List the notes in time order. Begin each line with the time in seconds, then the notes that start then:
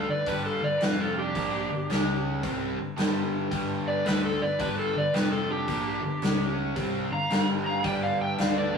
0.07 G1 G2 D3 D5
0.11 B4
0.27 G1 G2 D3 G3 B4, kick, open hi-hat
0.31 G4
0.46 F4 A4
0.61 G1 G2 D3 D5
0.67 B4
0.81 F1 F2 C3 F3 F4 B4, snare, open hi-hat
1.00 F4 A4
1.19 D4 G4
1.35 A#1 A#2 F3 A#3, kick, open hi-hat
1.69 G1 G2 D3
1.90 C#2 C#3 G#3 C#4, snare, open hi-hat
2.43 C2 C3 G3 C4, kick, open hi-hat
2.77 G1 G2 D3
2.97 G1 G2 D3 G3, snare, open hi-hat
3.51 G1 G2 D3 G3, kick, open hi-hat
3.88 B4 D5
4.05 D2 D3 A3 D4 G4 B4, snare, open hi-hat
4.25 F4 A4
4.40 G1 G2 D3 B4 D5
4.59 G1 G2 D3 G3 G4 B4, kick, open hi-hat
4.79 F4 A4
4.93 G1 G2 D3 B4
4.98 D5
5.14 F1 F2 C3 F3 F4 B4, snare, open hi-hat
5.32 F4 A4
5.49 D4 G4
5.68 A#1 A#2 F3 A#3, kick, open hi-hat
6.01 G1 G2 D3
6.22 C#2 C#3 G#3 C#4, snare, open hi-hat
6.76 C2 C3 G3 C4, kick, open hi-hat
7.10 G1 G2 D3 F5 A#5
7.30 G1 G2 D3 G3, snare, open hi-hat
7.66 F5 A#5
7.83 G1 G2 D3 G3 B3 D4 G4 B4 D5 G5, kick, open hi-hat
8.03 D5 F5
8.19 E5 G5
8.38 D2 D3 A3 D4 D5 F5, snare, open hi-hat
8.56 B4 D5
8.72 G1 G2 D3 F4 A#4